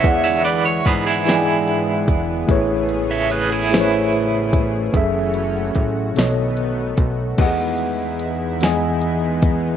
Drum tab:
CC |------|------|------|x-----|
HH |xxxxxx|xxxxxx|xxxxxx|xxxxxx|
SD |---o--|---o--|---o--|---o--|
BD |o-o--o|o----o|o-o--o|o----o|